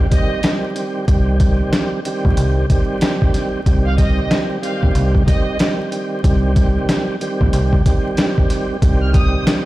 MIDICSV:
0, 0, Header, 1, 5, 480
1, 0, Start_track
1, 0, Key_signature, -3, "minor"
1, 0, Tempo, 645161
1, 804, Time_signature, 4, 2, 24, 8
1, 7181, End_track
2, 0, Start_track
2, 0, Title_t, "Violin section"
2, 0, Program_c, 0, 48
2, 83, Note_on_c, 0, 75, 84
2, 299, Note_off_c, 0, 75, 0
2, 2865, Note_on_c, 0, 77, 81
2, 2952, Note_off_c, 0, 77, 0
2, 2972, Note_on_c, 0, 75, 90
2, 3184, Note_off_c, 0, 75, 0
2, 3438, Note_on_c, 0, 77, 80
2, 3571, Note_off_c, 0, 77, 0
2, 3922, Note_on_c, 0, 75, 86
2, 4138, Note_off_c, 0, 75, 0
2, 6711, Note_on_c, 0, 89, 82
2, 6795, Note_off_c, 0, 89, 0
2, 6815, Note_on_c, 0, 87, 95
2, 7026, Note_off_c, 0, 87, 0
2, 7181, End_track
3, 0, Start_track
3, 0, Title_t, "Tonewheel organ"
3, 0, Program_c, 1, 16
3, 77, Note_on_c, 1, 51, 90
3, 80, Note_on_c, 1, 55, 84
3, 84, Note_on_c, 1, 60, 80
3, 88, Note_on_c, 1, 67, 103
3, 305, Note_off_c, 1, 51, 0
3, 306, Note_off_c, 1, 55, 0
3, 308, Note_off_c, 1, 60, 0
3, 310, Note_off_c, 1, 67, 0
3, 335, Note_on_c, 1, 51, 82
3, 339, Note_on_c, 1, 55, 65
3, 343, Note_on_c, 1, 60, 72
3, 347, Note_on_c, 1, 67, 88
3, 543, Note_off_c, 1, 51, 0
3, 547, Note_off_c, 1, 55, 0
3, 550, Note_off_c, 1, 60, 0
3, 552, Note_on_c, 1, 51, 77
3, 554, Note_off_c, 1, 67, 0
3, 556, Note_on_c, 1, 55, 70
3, 559, Note_on_c, 1, 60, 69
3, 563, Note_on_c, 1, 67, 80
3, 782, Note_off_c, 1, 51, 0
3, 785, Note_off_c, 1, 55, 0
3, 786, Note_off_c, 1, 60, 0
3, 788, Note_off_c, 1, 67, 0
3, 795, Note_on_c, 1, 51, 97
3, 798, Note_on_c, 1, 55, 89
3, 803, Note_on_c, 1, 60, 84
3, 806, Note_on_c, 1, 67, 98
3, 1019, Note_off_c, 1, 51, 0
3, 1023, Note_off_c, 1, 55, 0
3, 1026, Note_off_c, 1, 60, 0
3, 1028, Note_on_c, 1, 51, 91
3, 1029, Note_off_c, 1, 67, 0
3, 1031, Note_on_c, 1, 55, 76
3, 1035, Note_on_c, 1, 60, 80
3, 1039, Note_on_c, 1, 67, 95
3, 1485, Note_off_c, 1, 51, 0
3, 1487, Note_off_c, 1, 55, 0
3, 1489, Note_off_c, 1, 60, 0
3, 1491, Note_off_c, 1, 67, 0
3, 1531, Note_on_c, 1, 51, 89
3, 1534, Note_on_c, 1, 55, 88
3, 1537, Note_on_c, 1, 60, 95
3, 1541, Note_on_c, 1, 67, 101
3, 1977, Note_off_c, 1, 51, 0
3, 1978, Note_off_c, 1, 55, 0
3, 1979, Note_off_c, 1, 60, 0
3, 1982, Note_off_c, 1, 67, 0
3, 2013, Note_on_c, 1, 51, 85
3, 2015, Note_on_c, 1, 55, 89
3, 2020, Note_on_c, 1, 60, 82
3, 2024, Note_on_c, 1, 67, 102
3, 2682, Note_off_c, 1, 51, 0
3, 2684, Note_off_c, 1, 55, 0
3, 2686, Note_off_c, 1, 60, 0
3, 2688, Note_off_c, 1, 67, 0
3, 2728, Note_on_c, 1, 51, 89
3, 2732, Note_on_c, 1, 55, 85
3, 2736, Note_on_c, 1, 60, 91
3, 2739, Note_on_c, 1, 67, 97
3, 2941, Note_off_c, 1, 51, 0
3, 2944, Note_off_c, 1, 55, 0
3, 2947, Note_off_c, 1, 60, 0
3, 2949, Note_on_c, 1, 51, 84
3, 2951, Note_off_c, 1, 67, 0
3, 2953, Note_on_c, 1, 55, 82
3, 2956, Note_on_c, 1, 60, 84
3, 2960, Note_on_c, 1, 67, 91
3, 3406, Note_off_c, 1, 51, 0
3, 3408, Note_off_c, 1, 55, 0
3, 3409, Note_off_c, 1, 60, 0
3, 3411, Note_off_c, 1, 67, 0
3, 3432, Note_on_c, 1, 51, 95
3, 3435, Note_on_c, 1, 55, 87
3, 3439, Note_on_c, 1, 60, 85
3, 3443, Note_on_c, 1, 67, 106
3, 3887, Note_off_c, 1, 51, 0
3, 3889, Note_off_c, 1, 55, 0
3, 3891, Note_off_c, 1, 60, 0
3, 3893, Note_off_c, 1, 67, 0
3, 3914, Note_on_c, 1, 51, 89
3, 3918, Note_on_c, 1, 55, 82
3, 3921, Note_on_c, 1, 60, 81
3, 3926, Note_on_c, 1, 67, 105
3, 4144, Note_off_c, 1, 51, 0
3, 4146, Note_off_c, 1, 55, 0
3, 4147, Note_off_c, 1, 60, 0
3, 4150, Note_off_c, 1, 67, 0
3, 4173, Note_on_c, 1, 51, 81
3, 4177, Note_on_c, 1, 55, 66
3, 4181, Note_on_c, 1, 60, 73
3, 4185, Note_on_c, 1, 67, 87
3, 4382, Note_off_c, 1, 51, 0
3, 4385, Note_off_c, 1, 55, 0
3, 4389, Note_off_c, 1, 60, 0
3, 4391, Note_on_c, 1, 51, 75
3, 4392, Note_off_c, 1, 67, 0
3, 4394, Note_on_c, 1, 55, 71
3, 4397, Note_on_c, 1, 60, 68
3, 4401, Note_on_c, 1, 67, 80
3, 4622, Note_off_c, 1, 51, 0
3, 4624, Note_off_c, 1, 55, 0
3, 4625, Note_off_c, 1, 60, 0
3, 4627, Note_off_c, 1, 67, 0
3, 4633, Note_on_c, 1, 51, 95
3, 4637, Note_on_c, 1, 55, 91
3, 4641, Note_on_c, 1, 60, 85
3, 4644, Note_on_c, 1, 67, 99
3, 4855, Note_off_c, 1, 51, 0
3, 4860, Note_off_c, 1, 55, 0
3, 4863, Note_off_c, 1, 60, 0
3, 4864, Note_on_c, 1, 51, 91
3, 4867, Note_off_c, 1, 67, 0
3, 4869, Note_on_c, 1, 55, 79
3, 4872, Note_on_c, 1, 60, 80
3, 4876, Note_on_c, 1, 67, 101
3, 5323, Note_off_c, 1, 51, 0
3, 5326, Note_off_c, 1, 55, 0
3, 5327, Note_off_c, 1, 60, 0
3, 5329, Note_off_c, 1, 67, 0
3, 5366, Note_on_c, 1, 51, 87
3, 5369, Note_on_c, 1, 55, 85
3, 5372, Note_on_c, 1, 60, 95
3, 5377, Note_on_c, 1, 67, 102
3, 5814, Note_off_c, 1, 51, 0
3, 5816, Note_off_c, 1, 55, 0
3, 5817, Note_off_c, 1, 60, 0
3, 5820, Note_off_c, 1, 67, 0
3, 5849, Note_on_c, 1, 51, 85
3, 5852, Note_on_c, 1, 55, 86
3, 5856, Note_on_c, 1, 60, 82
3, 5860, Note_on_c, 1, 67, 101
3, 6521, Note_off_c, 1, 51, 0
3, 6522, Note_off_c, 1, 55, 0
3, 6524, Note_off_c, 1, 60, 0
3, 6526, Note_off_c, 1, 67, 0
3, 6565, Note_on_c, 1, 51, 89
3, 6569, Note_on_c, 1, 55, 90
3, 6572, Note_on_c, 1, 60, 91
3, 6576, Note_on_c, 1, 67, 106
3, 6777, Note_off_c, 1, 51, 0
3, 6781, Note_off_c, 1, 55, 0
3, 6785, Note_off_c, 1, 60, 0
3, 6786, Note_on_c, 1, 51, 89
3, 6789, Note_off_c, 1, 67, 0
3, 6790, Note_on_c, 1, 55, 87
3, 6794, Note_on_c, 1, 60, 84
3, 6798, Note_on_c, 1, 67, 93
3, 7181, Note_off_c, 1, 51, 0
3, 7181, Note_off_c, 1, 55, 0
3, 7181, Note_off_c, 1, 60, 0
3, 7181, Note_off_c, 1, 67, 0
3, 7181, End_track
4, 0, Start_track
4, 0, Title_t, "Fingered electric bass"
4, 0, Program_c, 2, 33
4, 804, Note_on_c, 2, 36, 104
4, 1192, Note_off_c, 2, 36, 0
4, 1674, Note_on_c, 2, 34, 91
4, 1748, Note_off_c, 2, 34, 0
4, 1765, Note_on_c, 2, 36, 95
4, 1958, Note_off_c, 2, 36, 0
4, 2724, Note_on_c, 2, 36, 101
4, 3112, Note_off_c, 2, 36, 0
4, 3593, Note_on_c, 2, 34, 92
4, 3668, Note_off_c, 2, 34, 0
4, 3684, Note_on_c, 2, 36, 99
4, 3878, Note_off_c, 2, 36, 0
4, 4644, Note_on_c, 2, 36, 105
4, 5032, Note_off_c, 2, 36, 0
4, 5512, Note_on_c, 2, 34, 91
4, 5587, Note_off_c, 2, 34, 0
4, 5604, Note_on_c, 2, 36, 97
4, 5798, Note_off_c, 2, 36, 0
4, 6563, Note_on_c, 2, 36, 96
4, 6952, Note_off_c, 2, 36, 0
4, 7181, End_track
5, 0, Start_track
5, 0, Title_t, "Drums"
5, 86, Note_on_c, 9, 42, 88
5, 87, Note_on_c, 9, 36, 98
5, 160, Note_off_c, 9, 42, 0
5, 162, Note_off_c, 9, 36, 0
5, 319, Note_on_c, 9, 42, 93
5, 326, Note_on_c, 9, 40, 98
5, 330, Note_on_c, 9, 38, 117
5, 394, Note_off_c, 9, 42, 0
5, 400, Note_off_c, 9, 40, 0
5, 405, Note_off_c, 9, 38, 0
5, 564, Note_on_c, 9, 42, 79
5, 638, Note_off_c, 9, 42, 0
5, 803, Note_on_c, 9, 36, 119
5, 803, Note_on_c, 9, 42, 84
5, 878, Note_off_c, 9, 36, 0
5, 878, Note_off_c, 9, 42, 0
5, 1041, Note_on_c, 9, 42, 80
5, 1043, Note_on_c, 9, 36, 100
5, 1116, Note_off_c, 9, 42, 0
5, 1117, Note_off_c, 9, 36, 0
5, 1284, Note_on_c, 9, 40, 95
5, 1285, Note_on_c, 9, 42, 96
5, 1289, Note_on_c, 9, 38, 115
5, 1359, Note_off_c, 9, 40, 0
5, 1359, Note_off_c, 9, 42, 0
5, 1364, Note_off_c, 9, 38, 0
5, 1526, Note_on_c, 9, 42, 82
5, 1601, Note_off_c, 9, 42, 0
5, 1673, Note_on_c, 9, 36, 93
5, 1747, Note_off_c, 9, 36, 0
5, 1764, Note_on_c, 9, 42, 99
5, 1838, Note_off_c, 9, 42, 0
5, 2008, Note_on_c, 9, 36, 102
5, 2008, Note_on_c, 9, 42, 88
5, 2082, Note_off_c, 9, 42, 0
5, 2083, Note_off_c, 9, 36, 0
5, 2241, Note_on_c, 9, 42, 94
5, 2247, Note_on_c, 9, 40, 94
5, 2252, Note_on_c, 9, 38, 118
5, 2316, Note_off_c, 9, 42, 0
5, 2322, Note_off_c, 9, 40, 0
5, 2326, Note_off_c, 9, 38, 0
5, 2395, Note_on_c, 9, 36, 99
5, 2470, Note_off_c, 9, 36, 0
5, 2486, Note_on_c, 9, 42, 78
5, 2492, Note_on_c, 9, 38, 37
5, 2560, Note_off_c, 9, 42, 0
5, 2566, Note_off_c, 9, 38, 0
5, 2724, Note_on_c, 9, 36, 118
5, 2725, Note_on_c, 9, 42, 85
5, 2799, Note_off_c, 9, 36, 0
5, 2799, Note_off_c, 9, 42, 0
5, 2963, Note_on_c, 9, 36, 99
5, 2963, Note_on_c, 9, 42, 77
5, 3037, Note_off_c, 9, 42, 0
5, 3038, Note_off_c, 9, 36, 0
5, 3205, Note_on_c, 9, 40, 93
5, 3206, Note_on_c, 9, 42, 96
5, 3210, Note_on_c, 9, 38, 117
5, 3280, Note_off_c, 9, 40, 0
5, 3280, Note_off_c, 9, 42, 0
5, 3285, Note_off_c, 9, 38, 0
5, 3447, Note_on_c, 9, 42, 81
5, 3522, Note_off_c, 9, 42, 0
5, 3593, Note_on_c, 9, 36, 90
5, 3667, Note_off_c, 9, 36, 0
5, 3684, Note_on_c, 9, 42, 96
5, 3758, Note_off_c, 9, 42, 0
5, 3830, Note_on_c, 9, 36, 89
5, 3904, Note_off_c, 9, 36, 0
5, 3927, Note_on_c, 9, 42, 89
5, 3928, Note_on_c, 9, 36, 97
5, 4001, Note_off_c, 9, 42, 0
5, 4002, Note_off_c, 9, 36, 0
5, 4161, Note_on_c, 9, 42, 94
5, 4167, Note_on_c, 9, 40, 94
5, 4172, Note_on_c, 9, 38, 119
5, 4235, Note_off_c, 9, 42, 0
5, 4241, Note_off_c, 9, 40, 0
5, 4246, Note_off_c, 9, 38, 0
5, 4405, Note_on_c, 9, 42, 81
5, 4479, Note_off_c, 9, 42, 0
5, 4643, Note_on_c, 9, 36, 116
5, 4644, Note_on_c, 9, 42, 87
5, 4718, Note_off_c, 9, 36, 0
5, 4718, Note_off_c, 9, 42, 0
5, 4882, Note_on_c, 9, 42, 79
5, 4883, Note_on_c, 9, 36, 101
5, 4956, Note_off_c, 9, 42, 0
5, 4957, Note_off_c, 9, 36, 0
5, 5125, Note_on_c, 9, 40, 92
5, 5125, Note_on_c, 9, 42, 100
5, 5130, Note_on_c, 9, 38, 118
5, 5199, Note_off_c, 9, 40, 0
5, 5200, Note_off_c, 9, 42, 0
5, 5204, Note_off_c, 9, 38, 0
5, 5365, Note_on_c, 9, 42, 82
5, 5440, Note_off_c, 9, 42, 0
5, 5512, Note_on_c, 9, 36, 90
5, 5586, Note_off_c, 9, 36, 0
5, 5602, Note_on_c, 9, 42, 94
5, 5677, Note_off_c, 9, 42, 0
5, 5749, Note_on_c, 9, 36, 88
5, 5824, Note_off_c, 9, 36, 0
5, 5846, Note_on_c, 9, 42, 90
5, 5847, Note_on_c, 9, 36, 96
5, 5920, Note_off_c, 9, 42, 0
5, 5921, Note_off_c, 9, 36, 0
5, 6080, Note_on_c, 9, 42, 95
5, 6087, Note_on_c, 9, 40, 93
5, 6091, Note_on_c, 9, 38, 113
5, 6155, Note_off_c, 9, 42, 0
5, 6161, Note_off_c, 9, 40, 0
5, 6166, Note_off_c, 9, 38, 0
5, 6234, Note_on_c, 9, 36, 93
5, 6309, Note_off_c, 9, 36, 0
5, 6324, Note_on_c, 9, 42, 80
5, 6330, Note_on_c, 9, 38, 37
5, 6399, Note_off_c, 9, 42, 0
5, 6404, Note_off_c, 9, 38, 0
5, 6563, Note_on_c, 9, 36, 120
5, 6564, Note_on_c, 9, 42, 87
5, 6637, Note_off_c, 9, 36, 0
5, 6638, Note_off_c, 9, 42, 0
5, 6801, Note_on_c, 9, 42, 81
5, 6802, Note_on_c, 9, 36, 105
5, 6875, Note_off_c, 9, 42, 0
5, 6876, Note_off_c, 9, 36, 0
5, 7044, Note_on_c, 9, 40, 98
5, 7045, Note_on_c, 9, 42, 101
5, 7049, Note_on_c, 9, 38, 118
5, 7119, Note_off_c, 9, 40, 0
5, 7119, Note_off_c, 9, 42, 0
5, 7124, Note_off_c, 9, 38, 0
5, 7181, End_track
0, 0, End_of_file